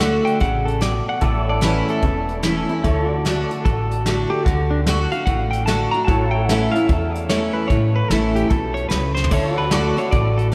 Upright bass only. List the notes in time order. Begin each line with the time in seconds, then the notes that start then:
Already playing: D2
0.41 A1
1.22 A1
2.03 E1
2.85 D2
3.66 A1
4.46 D2
5.27 A1
6.08 A1
6.89 E2
7.70 A1
8.10 A1
8.51 B1
8.91 C#2
9.32 D2
10.13 A1